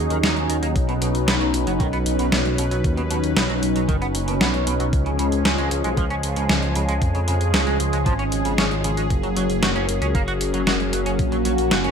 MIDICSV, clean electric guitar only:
0, 0, Header, 1, 2, 480
1, 0, Start_track
1, 0, Tempo, 521739
1, 696, Time_signature, 4, 2, 24, 8
1, 10957, End_track
2, 0, Start_track
2, 0, Title_t, "Clean electric guitar"
2, 0, Program_c, 0, 27
2, 96, Note_on_c, 0, 51, 74
2, 156, Note_off_c, 0, 51, 0
2, 216, Note_on_c, 0, 63, 77
2, 276, Note_off_c, 0, 63, 0
2, 456, Note_on_c, 0, 51, 74
2, 516, Note_off_c, 0, 51, 0
2, 575, Note_on_c, 0, 58, 69
2, 612, Note_off_c, 0, 58, 0
2, 816, Note_on_c, 0, 47, 77
2, 852, Note_off_c, 0, 47, 0
2, 936, Note_on_c, 0, 47, 73
2, 996, Note_off_c, 0, 47, 0
2, 1176, Note_on_c, 0, 59, 83
2, 1236, Note_off_c, 0, 59, 0
2, 1295, Note_on_c, 0, 54, 77
2, 1332, Note_off_c, 0, 54, 0
2, 1536, Note_on_c, 0, 54, 72
2, 1572, Note_off_c, 0, 54, 0
2, 1656, Note_on_c, 0, 51, 94
2, 1716, Note_off_c, 0, 51, 0
2, 1776, Note_on_c, 0, 59, 75
2, 1812, Note_off_c, 0, 59, 0
2, 2017, Note_on_c, 0, 47, 72
2, 2076, Note_off_c, 0, 47, 0
2, 2136, Note_on_c, 0, 59, 76
2, 2196, Note_off_c, 0, 59, 0
2, 2376, Note_on_c, 0, 47, 72
2, 2436, Note_off_c, 0, 47, 0
2, 2497, Note_on_c, 0, 54, 69
2, 2532, Note_off_c, 0, 54, 0
2, 2737, Note_on_c, 0, 47, 78
2, 2772, Note_off_c, 0, 47, 0
2, 2857, Note_on_c, 0, 47, 73
2, 2916, Note_off_c, 0, 47, 0
2, 3096, Note_on_c, 0, 59, 81
2, 3156, Note_off_c, 0, 59, 0
2, 3216, Note_on_c, 0, 54, 71
2, 3252, Note_off_c, 0, 54, 0
2, 3456, Note_on_c, 0, 54, 66
2, 3492, Note_off_c, 0, 54, 0
2, 3575, Note_on_c, 0, 51, 99
2, 3635, Note_off_c, 0, 51, 0
2, 3695, Note_on_c, 0, 59, 75
2, 3731, Note_off_c, 0, 59, 0
2, 3935, Note_on_c, 0, 47, 79
2, 3995, Note_off_c, 0, 47, 0
2, 4055, Note_on_c, 0, 59, 72
2, 4115, Note_off_c, 0, 59, 0
2, 4294, Note_on_c, 0, 47, 70
2, 4355, Note_off_c, 0, 47, 0
2, 4415, Note_on_c, 0, 54, 69
2, 4451, Note_off_c, 0, 54, 0
2, 4656, Note_on_c, 0, 49, 76
2, 4692, Note_off_c, 0, 49, 0
2, 4775, Note_on_c, 0, 49, 76
2, 4836, Note_off_c, 0, 49, 0
2, 5015, Note_on_c, 0, 61, 77
2, 5076, Note_off_c, 0, 61, 0
2, 5136, Note_on_c, 0, 56, 74
2, 5226, Note_off_c, 0, 56, 0
2, 5376, Note_on_c, 0, 56, 73
2, 5412, Note_off_c, 0, 56, 0
2, 5496, Note_on_c, 0, 53, 93
2, 5556, Note_off_c, 0, 53, 0
2, 5616, Note_on_c, 0, 61, 73
2, 5652, Note_off_c, 0, 61, 0
2, 5856, Note_on_c, 0, 49, 78
2, 5916, Note_off_c, 0, 49, 0
2, 5976, Note_on_c, 0, 61, 80
2, 6036, Note_off_c, 0, 61, 0
2, 6216, Note_on_c, 0, 49, 69
2, 6276, Note_off_c, 0, 49, 0
2, 6336, Note_on_c, 0, 56, 75
2, 6372, Note_off_c, 0, 56, 0
2, 6576, Note_on_c, 0, 49, 78
2, 6612, Note_off_c, 0, 49, 0
2, 6695, Note_on_c, 0, 49, 77
2, 6755, Note_off_c, 0, 49, 0
2, 6935, Note_on_c, 0, 61, 80
2, 6995, Note_off_c, 0, 61, 0
2, 7055, Note_on_c, 0, 56, 76
2, 7145, Note_off_c, 0, 56, 0
2, 7295, Note_on_c, 0, 56, 75
2, 7331, Note_off_c, 0, 56, 0
2, 7415, Note_on_c, 0, 53, 93
2, 7476, Note_off_c, 0, 53, 0
2, 7535, Note_on_c, 0, 61, 76
2, 7572, Note_off_c, 0, 61, 0
2, 7776, Note_on_c, 0, 49, 75
2, 7836, Note_off_c, 0, 49, 0
2, 7896, Note_on_c, 0, 61, 75
2, 7956, Note_off_c, 0, 61, 0
2, 8136, Note_on_c, 0, 49, 77
2, 8196, Note_off_c, 0, 49, 0
2, 8256, Note_on_c, 0, 56, 70
2, 8292, Note_off_c, 0, 56, 0
2, 8496, Note_on_c, 0, 54, 78
2, 8532, Note_off_c, 0, 54, 0
2, 8617, Note_on_c, 0, 54, 75
2, 8676, Note_off_c, 0, 54, 0
2, 8856, Note_on_c, 0, 66, 83
2, 8916, Note_off_c, 0, 66, 0
2, 8975, Note_on_c, 0, 61, 72
2, 9065, Note_off_c, 0, 61, 0
2, 9216, Note_on_c, 0, 61, 75
2, 9252, Note_off_c, 0, 61, 0
2, 9336, Note_on_c, 0, 58, 98
2, 9396, Note_off_c, 0, 58, 0
2, 9456, Note_on_c, 0, 66, 74
2, 9492, Note_off_c, 0, 66, 0
2, 9696, Note_on_c, 0, 54, 75
2, 9756, Note_off_c, 0, 54, 0
2, 9816, Note_on_c, 0, 66, 78
2, 9876, Note_off_c, 0, 66, 0
2, 10056, Note_on_c, 0, 54, 73
2, 10116, Note_off_c, 0, 54, 0
2, 10176, Note_on_c, 0, 61, 73
2, 10212, Note_off_c, 0, 61, 0
2, 10416, Note_on_c, 0, 54, 74
2, 10452, Note_off_c, 0, 54, 0
2, 10536, Note_on_c, 0, 54, 75
2, 10596, Note_off_c, 0, 54, 0
2, 10776, Note_on_c, 0, 66, 82
2, 10836, Note_off_c, 0, 66, 0
2, 10895, Note_on_c, 0, 61, 74
2, 10957, Note_off_c, 0, 61, 0
2, 10957, End_track
0, 0, End_of_file